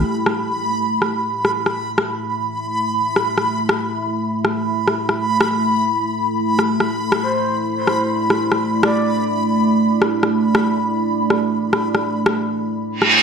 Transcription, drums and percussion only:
0.26 cross-stick medium
1.02 cross-stick soft
1.45 cross-stick medium
1.66 cross-stick soft
1.98 cross-stick medium
3.16 cross-stick medium
3.38 cross-stick soft
3.69 cross-stick medium
4.45 cross-stick medium
4.88 cross-stick medium
5.09 cross-stick soft
5.41 cross-stick medium
6.59 cross-stick medium
6.80 cross-stick soft
7.12 cross-stick medium
7.87 cross-stick medium
8.30 cross-stick medium
8.52 cross-stick soft
8.83 cross-stick medium
10.02 cross-stick medium
10.23 cross-stick soft
10.55 cross-stick medium
11.30 cross-stick medium
11.73 cross-stick medium
11.95 cross-stick soft
12.26 cross-stick medium
13.02 cross-stick medium

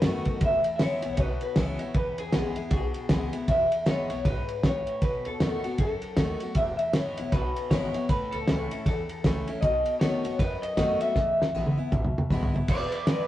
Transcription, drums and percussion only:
0.02 snare loud
0.02 ride loud
0.25 kick medium
0.25 ride medium
0.41 kick loud
0.41 ride medium
0.64 ride medium
0.79 snare loud
0.79 ride medium
1.02 ride medium
1.17 kick loud
1.17 snare soft
1.17 ride medium
1.41 ride medium
1.56 kick medium
1.56 snare loud
1.56 ride medium
1.79 ride medium
1.94 kick loud
1.94 ride medium
2.18 ride medium
2.32 snare loud
2.32 ride medium
2.56 ride medium
2.71 kick loud
2.71 snare soft
2.71 ride medium
2.94 ride medium
3.09 kick medium
3.09 snare loud
3.09 ride medium
3.33 ride medium
3.48 kick loud
3.48 ride medium
3.72 ride medium
3.86 snare loud
3.86 ride medium
4.10 ride medium
4.25 kick loud
4.25 snare soft
4.25 ride medium
4.49 ride medium
4.63 kick medium
4.63 snare loud
4.63 ride medium
4.87 ride medium
5.02 kick loud
5.02 ride medium
5.25 ride medium
5.40 snare loud
5.40 ride medium
5.64 ride medium
5.78 kick loud
5.78 ride medium
6.02 ride medium
6.17 kick medium
6.17 snare loud
6.17 ride medium
6.40 ride medium
6.55 kick loud
6.55 ride medium
6.79 ride medium
6.93 snare loud
6.93 ride medium
7.17 ride medium
7.32 kick loud
7.32 snare soft
7.32 ride medium
7.56 ride medium
7.71 kick medium
7.71 snare loud
7.71 ride medium
7.94 ride medium
8.09 kick loud
8.09 ride medium
8.32 ride medium
8.48 snare loud
8.48 ride medium
8.71 ride medium
8.86 kick loud
8.86 snare soft
8.86 ride medium
9.09 ride medium
9.24 kick medium
9.24 snare loud
9.24 ride medium
9.47 ride medium
9.62 kick loud
9.62 ride medium
9.86 ride medium
10.01 snare loud
10.01 ride medium
10.25 ride medium
10.39 kick loud
10.39 snare soft
10.39 ride loud
10.63 ride medium
10.77 kick medium
10.77 snare loud
10.77 ride medium
11.01 ride medium
11.15 kick loud
11.15 snare medium
11.42 snare medium
11.66 high tom medium
11.92 kick loud
11.92 mid tom medium
12.05 mid tom medium
12.18 mid tom medium
12.30 kick medium
12.30 floor tom medium
12.43 floor tom loud
12.56 floor tom medium
12.68 kick loud
12.68 crash loud
12.92 ride medium
13.07 snare loud
13.07 ride medium

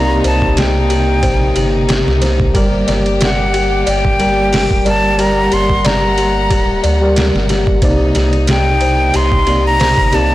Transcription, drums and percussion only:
0.24 ride medium
0.42 kick medium
0.57 snare loud
0.57 ride medium
0.90 ride medium
1.23 kick loud
1.23 ride medium
1.56 ride medium
1.89 snare loud
1.89 ride medium
2.08 snare soft
2.22 snare soft
2.22 ride medium
2.40 kick loud
2.55 kick loud
2.55 ride medium
2.88 snare soft
2.88 ride medium
3.06 ride soft
3.21 snare loud
3.21 ride medium
3.54 ride medium
3.87 ride medium
4.05 kick medium
4.20 ride medium
4.53 snare loud
4.53 open hi-hat medium
4.71 kick loud
4.86 ride medium
5.19 ride medium
5.52 ride medium
5.70 kick medium
5.85 snare loud
5.85 ride medium
6.18 ride medium
6.50 kick loud
6.50 ride medium
6.84 ride medium
7.16 snare loud
7.16 ride medium
7.36 snare soft
7.49 snare soft
7.49 ride medium
7.67 kick medium
7.82 kick loud
7.82 ride medium
8.15 snare medium
8.15 ride medium
8.33 ride soft
8.47 snare loud
8.47 ride medium
8.81 ride medium
9.14 ride medium
9.32 kick loud
9.47 ride medium
9.80 snare loud
9.80 open hi-hat medium
9.98 kick loud
10.12 ride medium

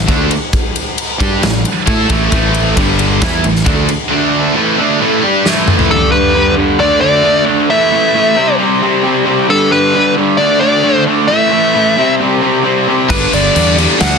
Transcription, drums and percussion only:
0.08 kick loud
0.08 ride medium
0.31 ride medium
0.53 kick loud
0.53 ride medium
0.76 ride medium
0.98 ride loud
1.20 kick loud
1.20 ride medium
1.43 snare loud
1.43 ride loud
1.65 ride medium
1.87 kick loud
1.87 ride loud
2.10 kick loud
2.10 ride medium
2.32 kick loud
2.32 ride loud
2.54 ride medium
2.77 kick loud
2.77 ride loud
2.99 ride medium
3.22 kick loud
3.22 snare loud
3.22 ride medium
3.44 ride medium
3.56 snare soft
3.66 kick loud
3.66 ride medium
3.89 ride medium
5.46 snare medium
5.68 mid tom loud
5.79 floor tom medium
13.10 kick loud
13.10 crash medium
13.33 crash medium
13.56 crash loud
13.78 crash medium
14.00 snare loud
14.00 crash loud

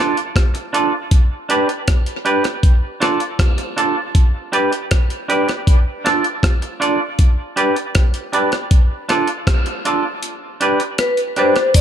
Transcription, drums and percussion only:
0.00 cross-stick medium
0.17 closed hi-hat soft
0.36 kick loud
0.36 cross-stick loud
0.36 closed hi-hat medium
0.55 closed hi-hat soft
0.74 closed hi-hat medium
1.11 kick loud
1.11 closed hi-hat medium
1.50 closed hi-hat medium
1.69 closed hi-hat soft
1.88 kick loud
1.88 cross-stick loud
1.88 closed hi-hat loud
2.06 closed hi-hat medium
2.26 closed hi-hat medium
2.44 cross-stick medium
2.44 closed hi-hat soft
2.63 kick loud
2.63 closed hi-hat medium
3.02 cross-stick medium
3.02 closed hi-hat medium
3.20 closed hi-hat soft
3.39 kick loud
3.39 cross-stick loud
3.39 closed hi-hat medium
3.58 closed hi-hat medium
3.78 closed hi-hat medium
4.15 kick loud
4.15 closed hi-hat medium
4.53 closed hi-hat medium
4.72 closed hi-hat soft
4.91 kick loud
4.91 cross-stick loud
4.91 closed hi-hat loud
5.10 closed hi-hat soft
5.30 closed hi-hat medium
5.49 cross-stick soft
5.49 closed hi-hat soft
5.67 kick loud
5.67 closed hi-hat medium
6.06 cross-stick medium
6.06 closed hi-hat medium
6.24 closed hi-hat soft
6.43 kick loud
6.43 cross-stick loud
6.43 closed hi-hat medium
6.62 closed hi-hat medium
6.82 closed hi-hat medium
7.19 kick loud
7.19 closed hi-hat medium
7.57 closed hi-hat medium
7.76 closed hi-hat soft
7.95 kick loud
7.95 cross-stick loud
7.95 closed hi-hat medium
8.14 closed hi-hat medium
8.33 closed hi-hat medium
8.52 cross-stick medium
8.52 closed hi-hat soft
8.71 kick loud
8.71 closed hi-hat medium
9.09 cross-stick medium
9.09 closed hi-hat medium
9.27 closed hi-hat soft
9.47 kick loud
9.47 cross-stick loud
9.47 closed hi-hat medium
9.66 closed hi-hat medium
9.85 closed hi-hat medium
10.23 closed hi-hat medium
10.61 closed hi-hat medium
10.80 closed hi-hat soft
10.98 cross-stick loud
10.98 closed hi-hat loud
11.17 closed hi-hat soft
11.36 closed hi-hat medium
11.56 cross-stick medium
11.56 closed hi-hat soft
11.74 kick loud
11.74 closed hi-hat loud
11.74 crash medium
11.74 cabasa medium

